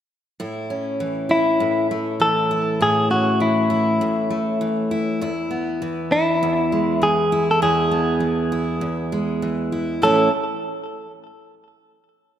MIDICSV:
0, 0, Header, 1, 3, 480
1, 0, Start_track
1, 0, Key_signature, 3, "major"
1, 0, Tempo, 601202
1, 319, Time_signature, 4, 2, 24, 8
1, 9895, End_track
2, 0, Start_track
2, 0, Title_t, "Clean electric guitar"
2, 0, Program_c, 0, 27
2, 1046, Note_on_c, 0, 64, 88
2, 1491, Note_off_c, 0, 64, 0
2, 1769, Note_on_c, 0, 69, 86
2, 2252, Note_off_c, 0, 69, 0
2, 2255, Note_on_c, 0, 68, 89
2, 2480, Note_off_c, 0, 68, 0
2, 2483, Note_on_c, 0, 66, 73
2, 2705, Note_off_c, 0, 66, 0
2, 2727, Note_on_c, 0, 64, 66
2, 3652, Note_off_c, 0, 64, 0
2, 4887, Note_on_c, 0, 64, 77
2, 5613, Note_on_c, 0, 68, 93
2, 5626, Note_off_c, 0, 64, 0
2, 5966, Note_off_c, 0, 68, 0
2, 5996, Note_on_c, 0, 69, 81
2, 6085, Note_off_c, 0, 69, 0
2, 6088, Note_on_c, 0, 68, 83
2, 7495, Note_off_c, 0, 68, 0
2, 8011, Note_on_c, 0, 69, 77
2, 8231, Note_off_c, 0, 69, 0
2, 9895, End_track
3, 0, Start_track
3, 0, Title_t, "Steel-string acoustic guitar"
3, 0, Program_c, 1, 25
3, 318, Note_on_c, 1, 45, 69
3, 322, Note_on_c, 1, 64, 60
3, 560, Note_on_c, 1, 61, 50
3, 800, Note_on_c, 1, 52, 54
3, 1028, Note_off_c, 1, 64, 0
3, 1031, Note_on_c, 1, 64, 55
3, 1270, Note_off_c, 1, 45, 0
3, 1280, Note_on_c, 1, 45, 68
3, 1524, Note_on_c, 1, 57, 53
3, 1751, Note_off_c, 1, 52, 0
3, 1754, Note_on_c, 1, 52, 60
3, 1999, Note_off_c, 1, 64, 0
3, 2002, Note_on_c, 1, 64, 59
3, 2232, Note_off_c, 1, 45, 0
3, 2240, Note_on_c, 1, 45, 72
3, 2244, Note_off_c, 1, 64, 0
3, 2247, Note_on_c, 1, 64, 57
3, 2470, Note_off_c, 1, 61, 0
3, 2479, Note_on_c, 1, 61, 46
3, 2714, Note_off_c, 1, 52, 0
3, 2717, Note_on_c, 1, 52, 49
3, 2951, Note_off_c, 1, 64, 0
3, 2954, Note_on_c, 1, 64, 59
3, 3193, Note_off_c, 1, 45, 0
3, 3202, Note_on_c, 1, 45, 65
3, 3427, Note_off_c, 1, 57, 0
3, 3437, Note_on_c, 1, 57, 55
3, 3676, Note_off_c, 1, 52, 0
3, 3679, Note_on_c, 1, 52, 61
3, 3917, Note_off_c, 1, 64, 0
3, 3921, Note_on_c, 1, 64, 64
3, 4162, Note_off_c, 1, 45, 0
3, 4163, Note_on_c, 1, 40, 69
3, 4165, Note_off_c, 1, 64, 0
3, 4168, Note_on_c, 1, 64, 64
3, 4217, Note_off_c, 1, 57, 0
3, 4218, Note_off_c, 1, 61, 0
3, 4396, Note_on_c, 1, 59, 51
3, 4641, Note_off_c, 1, 52, 0
3, 4644, Note_on_c, 1, 52, 57
3, 4884, Note_off_c, 1, 64, 0
3, 4887, Note_on_c, 1, 64, 57
3, 5123, Note_off_c, 1, 40, 0
3, 5131, Note_on_c, 1, 40, 73
3, 5368, Note_on_c, 1, 56, 55
3, 5598, Note_off_c, 1, 52, 0
3, 5601, Note_on_c, 1, 52, 61
3, 5842, Note_off_c, 1, 64, 0
3, 5845, Note_on_c, 1, 64, 62
3, 6074, Note_off_c, 1, 40, 0
3, 6083, Note_on_c, 1, 40, 78
3, 6085, Note_off_c, 1, 64, 0
3, 6088, Note_on_c, 1, 64, 69
3, 6309, Note_off_c, 1, 59, 0
3, 6318, Note_on_c, 1, 59, 52
3, 6546, Note_off_c, 1, 52, 0
3, 6550, Note_on_c, 1, 52, 49
3, 6798, Note_off_c, 1, 64, 0
3, 6802, Note_on_c, 1, 64, 63
3, 7026, Note_off_c, 1, 40, 0
3, 7036, Note_on_c, 1, 40, 70
3, 7274, Note_off_c, 1, 56, 0
3, 7283, Note_on_c, 1, 56, 57
3, 7520, Note_off_c, 1, 52, 0
3, 7523, Note_on_c, 1, 52, 65
3, 7760, Note_off_c, 1, 64, 0
3, 7763, Note_on_c, 1, 64, 62
3, 7998, Note_on_c, 1, 45, 67
3, 8000, Note_off_c, 1, 52, 0
3, 8004, Note_off_c, 1, 56, 0
3, 8004, Note_on_c, 1, 52, 68
3, 8007, Note_off_c, 1, 59, 0
3, 8007, Note_on_c, 1, 57, 70
3, 8010, Note_on_c, 1, 61, 77
3, 8017, Note_off_c, 1, 64, 0
3, 8020, Note_on_c, 1, 64, 79
3, 8058, Note_off_c, 1, 40, 0
3, 8203, Note_off_c, 1, 45, 0
3, 8205, Note_off_c, 1, 52, 0
3, 8207, Note_off_c, 1, 57, 0
3, 8209, Note_off_c, 1, 61, 0
3, 8214, Note_off_c, 1, 64, 0
3, 9895, End_track
0, 0, End_of_file